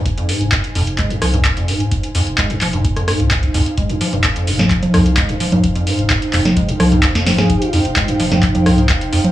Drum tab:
HH |xxoxxxoxxxoxxxox|xxoxxxoxxxoxxxox|xxoxxxoxxxoxxxox|xxoxxxoxxxoxxxox|
CP |----x---x---x---|----x-x-----x---|----x---x---x---|----x-x-----x---|
SD |----------r-----|---------rr-----|-------o--r-----|-------o--r--ooo|
CG |----------------|----------------|-------O-OO----O|-------O--O---OO|
BD |o---o---o---o---|o---o---o---oo--|o---o---o---o---|o---o---o---oo--|

HH |xxoxxxoxxxoxxxox|
CP |----x---x---x---|
SD |-------o--r-----|
CG |-------O-OO----O|
BD |o---o---o---o---|